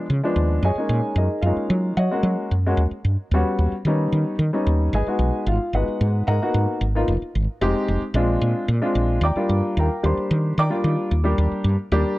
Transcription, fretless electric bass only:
0.10 0.21 C#3 medium
0.36 0.58 D#2 medium
0.63 0.74 F#2 medium
0.75 muted fretless electric bass stroke soft
0.89 1.00 A#2 medium
1.16 1.27 F#2 medium
1.42 1.54 F#2 medium
1.56 muted fretless electric bass stroke soft
1.70 1.92 F#3 medium
1.97 2.08 F#3 medium
2.23 2.35 F#3 medium
2.51 2.73 F#2 medium
2.77 2.88 D#2 medium
2.91 muted fretless electric bass stroke soft
3.05 3.16 G2 medium
3.31 3.42 D#2 medium
3.59 3.70 D#2 medium
3.72 muted fretless electric bass stroke soft
3.85 4.07 D#3 medium
4.12 4.23 D#3 medium
4.39 4.50 D#3 medium
4.67 4.88 D#2 medium
4.93 5.04 G#1 medium
5.07 muted fretless electric bass stroke soft
5.19 5.30 B1 medium
5.46 5.58 G#1 medium
5.73 5.84 G#1 medium
5.88 muted fretless electric bass stroke soft
6.01 6.22 G#2 medium
6.28 6.39 G#2 medium
6.54 6.65 G#2 medium
6.81 7.03 G#1 medium
7.08 7.19 F1 medium
7.22 muted fretless electric bass stroke soft
7.35 7.46 G#1 medium
7.61 7.73 F1 medium
7.88 8.00 F1 medium
8.02 muted fretless electric bass stroke soft
8.14 8.36 A#1 medium
8.41 8.53 A#2 medium
8.68 8.80 A#2 medium
8.95 9.17 A#1 medium
9.21 9.33 D#2 medium
9.36 muted fretless electric bass stroke soft
9.49 9.61 G2 medium
9.77 9.88 D#2 medium
10.04 10.15 D#2 medium
10.17 muted fretless electric bass stroke soft
10.31 10.53 D#3 medium
10.58 10.69 D#3 medium
10.84 10.95 D#3 medium
11.11 11.33 D#2 medium
11.38 11.49 D#2 medium
11.52 muted fretless electric bass stroke soft
11.64 11.76 G2 medium
11.92 12.03 D#2 medium

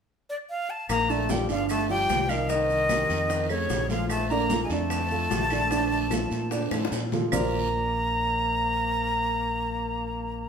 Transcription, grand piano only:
1.10 1.26 D3 medium
1.10 1.26 D4 medium
1.10 1.27 D5 medium
1.30 1.46 F3 medium
1.30 1.46 F4 medium
1.30 1.46 A4 medium
1.50 1.82 D3 medium
1.50 1.82 D4 medium
1.50 1.83 D5 medium
1.89 2.22 F3 medium
1.89 2.22 F4 medium
1.89 2.23 G4 medium
2.30 2.46 D#3 medium
2.30 2.46 D#4 medium
2.30 2.46 D#5 medium
2.50 2.83 D#3 medium
2.50 2.83 D#4 medium
2.50 2.83 D#5 medium
2.90 3.23 G3 medium
2.90 3.23 G4 medium
2.90 3.23 A#4 medium
3.30 3.46 D#3 medium
3.30 3.47 D#4 medium
3.30 3.47 D#5 medium
3.50 3.83 A3 medium
3.50 3.83 A4 medium
3.50 3.83 C#5 medium
3.90 4.23 F3 medium
3.90 4.23 F4 medium
3.90 4.24 A4 medium
4.31 4.47 D3 medium
4.31 4.47 D4 medium
4.31 4.47 D5 medium
4.51 4.67 F3 medium
4.51 4.68 F4 medium
4.51 4.68 A4 medium
4.71 5.04 D3 medium
4.71 5.04 D4 medium
4.71 5.04 D5 medium
5.12 5.44 F3 medium
5.12 5.44 F4 medium
5.12 5.44 A4 medium
5.52 5.68 D3 medium
5.52 5.68 D4 medium
5.52 5.68 D5 medium
5.72 6.05 D3 medium
5.72 6.05 D4 medium
5.72 6.05 D5 medium
6.12 6.45 F3 medium
6.12 6.45 F4 medium
6.12 6.45 A4 medium
6.51 6.68 D3 medium
6.51 6.68 D4 medium
6.51 6.69 D5 medium
6.73 7.05 F3 medium
6.73 7.05 F4 medium
6.73 7.06 A4 medium
7.13 7.29 F3 medium
7.13 7.29 F4 medium
7.13 7.30 A4 medium
7.32 10.49 A#3 medium
7.32 10.49 F4 medium
7.32 10.49 A#4 medium
7.32 10.49 C5 medium
7.32 10.49 D5 medium

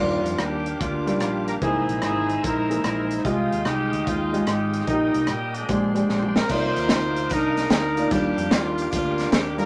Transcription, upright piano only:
0.00 0.62 D#3 medium
0.00 0.60 G3 medium
0.00 0.60 D4 medium
0.00 0.60 F4 medium
0.00 0.60 D5 medium
1.07 1.49 D#3 medium
1.07 1.49 G3 medium
1.07 1.49 F4 medium
1.07 1.49 D5 medium
1.61 2.25 C3 medium
1.61 2.24 E3 medium
1.61 2.23 A#3 medium
1.61 2.24 G#4 medium
1.61 2.24 C5 medium
2.70 3.12 E3 medium
2.70 3.12 A#3 medium
2.70 3.12 G#4 medium
2.70 3.12 A#4 medium
3.25 3.88 C3 medium
3.25 3.87 G#3 medium
3.25 3.87 F4 medium
3.25 3.87 G4 medium
3.25 3.87 D#5 medium
4.33 4.75 G#3 medium
4.33 4.75 F4 medium
4.33 4.75 G4 medium
4.33 4.75 D#5 medium
4.87 5.51 A#2 medium
4.87 5.49 A#3 medium
4.87 5.49 D#4 medium
4.87 4.94 F4 soft
4.87 5.49 D#5 medium
4.92 5.52 G4 medium
5.68 6.32 A#2 medium
5.68 5.90 G#3 medium
5.68 5.90 D4 medium
5.68 5.90 G4 medium
5.68 5.90 C5 medium
5.95 6.37 G#3 medium
5.95 6.37 D4 medium
5.95 6.37 G4 medium
5.95 6.37 C5 medium
6.50 7.13 C3 medium
6.50 7.11 A#3 medium
6.50 7.11 D#4 medium
6.50 7.11 F4 medium
6.50 7.11 D5 medium
7.97 8.07 A#3 medium
7.97 8.07 D#4 medium
7.97 8.07 F4 medium
7.97 8.07 D5 medium
8.11 8.74 D#3 medium
8.11 8.72 G3 medium
8.11 8.73 D4 medium
8.11 8.73 F4 medium
8.11 8.73 D5 medium
9.58 9.65 G3 medium
9.58 9.65 D#4 medium
9.58 9.65 F4 medium
9.58 9.65 A#4 medium

